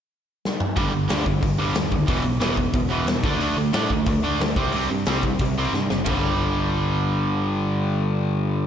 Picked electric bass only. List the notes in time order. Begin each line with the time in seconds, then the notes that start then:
0.77 G1
0.94 G1
1.11 D2
1.26 G1
1.43 G1
1.60 G1
1.76 D#2
2.08 E1
2.23 B1
2.39 E1
2.74 E1
3.05 E2
3.24 D2
3.40 D2
3.57 D2
3.73 A2
3.91 D2
4.07 D2
4.23 D2
4.40 D2
4.56 C2
4.74 C2
4.91 G2
5.07 C2
5.40 C2
5.73 G2
5.90 F#1
6.07 G1